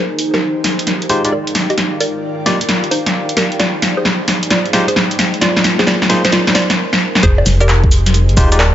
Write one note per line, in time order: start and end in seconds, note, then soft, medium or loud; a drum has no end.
0.00 1.54 F3 medium
0.00 1.54 D#4 medium
0.00 6.78 D#4 medium
0.00 1.54 G4 medium
0.00 0.18 G#4 medium
0.00 1.54 G#4 medium
0.00 0.61 A#4 medium
0.00 0.18 C5 loud
0.00 0.58 C5 medium
0.00 1.54 C5 medium
0.11 1.55 G#3 medium
0.11 5.19 G5 medium
0.19 open hi-hat loud
0.28 6.04 F5 medium
0.34 0.55 G4 medium
0.34 0.55 A#4 medium
0.34 snare soft
0.64 snare soft
0.64 open hi-hat medium
0.79 closed hi-hat medium
0.87 snare medium
0.87 closed hi-hat medium
1.02 closed hi-hat soft
1.09 1.22 G#3 medium
1.09 1.22 D#4 medium
1.09 1.22 F4 medium
1.09 1.22 G4 medium
1.09 1.22 C5 loud
1.09 open hi-hat loud
1.25 1.31 G#3 medium
1.25 1.31 D#4 medium
1.25 1.31 F4 medium
1.25 1.31 G4 medium
1.25 1.31 D5 medium
1.25 closed hi-hat medium
1.32 1.54 A#4 medium
1.32 1.54 D5 medium
1.47 closed hi-hat soft
1.55 3.35 D#3 medium
1.55 3.35 F4 medium
1.55 5.15 G4 medium
1.55 3.35 A#4 medium
1.55 3.35 D5 medium
1.55 snare medium
1.55 open hi-hat medium
1.65 4.11 D5 medium
1.70 1.91 G4 medium
1.70 1.91 D#5 medium
1.70 closed hi-hat soft
1.78 snare medium
1.78 closed hi-hat medium
2.00 2.18 A#4 medium
2.00 2.18 D5 medium
2.00 open hi-hat loud
2.46 2.58 A#3 medium
2.46 2.58 D#4 medium
2.46 2.58 F4 medium
2.46 2.58 G4 medium
2.46 2.58 D5 medium
2.46 snare medium
2.46 open hi-hat medium
2.61 closed hi-hat medium
2.69 snare medium
2.69 closed hi-hat medium
2.84 closed hi-hat soft
2.91 3.22 D#4 medium
2.91 3.22 C5 medium
2.91 open hi-hat loud
3.06 snare medium
3.06 closed hi-hat medium
3.29 closed hi-hat soft
3.37 5.17 F3 medium
3.37 6.74 D#4 medium
3.37 3.54 G4 medium
3.37 6.74 G#4 medium
3.37 3.54 A#4 medium
3.37 6.74 C5 medium
3.37 snare medium
3.37 open hi-hat medium
3.52 6.04 G#3 medium
3.52 closed hi-hat soft
3.59 3.82 F4 medium
3.59 3.82 D5 medium
3.59 snare medium
3.59 closed hi-hat medium
3.82 snare medium
3.82 open hi-hat loud
3.97 4.18 G#4 medium
3.97 4.18 C5 medium
4.05 snare medium
4.28 snare medium
4.28 open hi-hat medium
4.43 closed hi-hat medium
4.50 4.72 F4 medium
4.50 4.72 D5 medium
4.50 snare medium
4.50 closed hi-hat medium
4.66 closed hi-hat soft
4.73 4.85 G#3 medium
4.73 4.85 D#4 medium
4.73 4.85 F4 medium
4.73 4.85 G4 medium
4.73 4.85 C5 loud
4.73 snare medium
4.73 open hi-hat loud
4.88 5.09 G#4 medium
4.88 5.09 C5 medium
4.88 closed hi-hat medium
4.96 snare medium
5.11 closed hi-hat soft
5.19 6.76 A#3 medium
5.19 6.76 F4 medium
5.19 snare medium
5.19 open hi-hat medium
5.34 closed hi-hat soft
5.41 5.63 F4 medium
5.41 5.63 D5 loud
5.41 snare medium
5.41 closed hi-hat medium
5.57 snare medium
5.64 snare medium
5.64 open hi-hat loud
5.79 5.86 G#4 medium
5.79 5.86 C5 loud
5.79 snare medium
5.87 6.09 F4 medium
5.87 6.09 D5 loud
5.87 snare loud
6.02 snare medium
6.09 6.22 A#3 medium
6.09 6.22 D#4 medium
6.09 6.22 F4 medium
6.09 6.22 G#4 medium
6.09 6.22 C5 medium
6.09 snare loud
6.09 open hi-hat medium
6.25 6.31 G#4 medium
6.25 6.31 C5 loud
6.25 snare medium
6.25 closed hi-hat medium
6.32 6.54 F4 medium
6.32 6.54 D5 loud
6.32 snare loud
6.32 closed hi-hat medium
6.47 snare medium
6.47 closed hi-hat soft
6.55 6.76 F4 medium
6.55 6.77 D5 loud
6.55 snare loud
6.55 open hi-hat loud
6.70 snare medium
6.70 closed hi-hat medium
6.93 snare medium
7.15 snare medium
7.23 7.43 F1 loud
7.23 8.75 D#4 medium
7.23 8.75 G4 medium
7.23 7.45 G#4 medium
7.23 8.75 G#4 medium
7.23 8.75 C5 medium
7.23 7.45 C5 loud
7.23 kick loud
7.23 closed hi-hat medium
7.23 cabasa soft
7.38 high bongo medium
7.46 8.31 F1 loud
7.46 snare medium
7.46 open hi-hat loud
7.46 cabasa medium
7.60 7.82 G4 medium
7.60 7.82 A#4 loud
7.60 high bongo medium
7.60 cabasa soft
7.69 clap loud
7.69 cabasa soft
7.76 8.75 G5 medium
7.84 kick loud
7.91 open hi-hat loud
7.91 cabasa medium
8.06 snare medium
8.06 closed hi-hat medium
8.06 cabasa soft
8.14 closed hi-hat medium
8.14 cabasa soft
8.29 8.35 G#1 medium
8.29 closed hi-hat soft
8.37 8.75 D#1 loud
8.37 8.49 G#3 medium
8.37 8.49 D#4 medium
8.37 8.49 F4 medium
8.37 8.49 G4 medium
8.37 8.49 C5 loud
8.37 kick loud
8.37 open hi-hat loud
8.37 cabasa medium
8.52 8.58 G#3 medium
8.52 8.58 D#4 medium
8.52 8.58 F4 medium
8.52 8.58 G4 medium
8.52 8.58 D5 medium
8.52 closed hi-hat medium
8.52 cabasa soft
8.59 8.75 A#4 medium
8.59 8.75 D5 medium
8.59 clap loud
8.59 cabasa soft